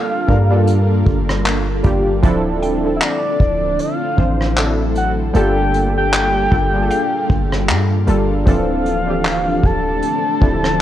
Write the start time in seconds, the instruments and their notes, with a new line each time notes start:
Already playing: synth keys G3 A#3 D4 F4 A4, ambient pad G3 A#3 D4 F4, soft synth lead F5
0.28 808-style bass G2, synth keys G3 A#3 D4 F4 A#4, kick
0.50 synth keys G3 A#3 D4 F4 A4
0.67 closed hi-hat
1.07 808-style bass G1, kick
1.29 cross-stick
1.46 clap, closed hi-hat
1.83 808-style bass G1, synth keys G3 A#3 D4 F4 G4, kick, closed hi-hat
2.22 808-style bass D1, ambient pad D3 A3 C4 D4, synth keys F3 C4 D4 E4 A4, kick, closed hi-hat
2.62 synth pluck G5, closed hi-hat
2.84 synth keys F3 C4 D4 E4 A4
2.96 soft synth lead E5
3.01 soft synth lead D5, clap, closed hi-hat
3.40 808-style bass D1, kick
3.79 soft synth lead F5, closed hi-hat
4.17 808-style bass A1, synth keys E3 F3 C4 D4 C5, kick
4.41 cross-stick
4.56 synth keys F#3 C4 D4 E4 A4, clap, closed hi-hat
4.95 soft synth lead F#5, closed hi-hat
5.34 808-style bass G1, synth keys G3 A#3 D4 F4 A4, ambient pad G3 A#3 D4 F4, soft synth lead G5, closed hi-hat
5.74 closed hi-hat
5.98 soft synth lead G5
6.13 clap, closed hi-hat
6.51 808-style bass G1, synth keys G3 A#3 D4 F4 A4, kick
6.73 synth keys G3 A#3 D4 F4 G#4
6.83 synth keys A4
6.91 synth pluck F5 G5, closed hi-hat
7.30 808-style bass G1, kick
7.52 cross-stick
7.69 808-style bass G2, clap, closed hi-hat
8.07 808-style bass G1, synth keys G3 A#3 D4 F4 A4, closed hi-hat
8.46 808-style bass D1, ambient pad D3 A3 C4 D4, synth keys E3 F3 C4 D4 A4, soft synth lead F5, kick, closed hi-hat
8.86 closed hi-hat
9.07 synth keys E3 F3 C4 D4 G4
9.24 clap, closed hi-hat
9.64 808-style bass D1, soft synth lead A5, kick
10.03 closed hi-hat
10.40 808-style bass D1, synth keys F3 C4 D4 E4 A4, kick
10.64 cross-stick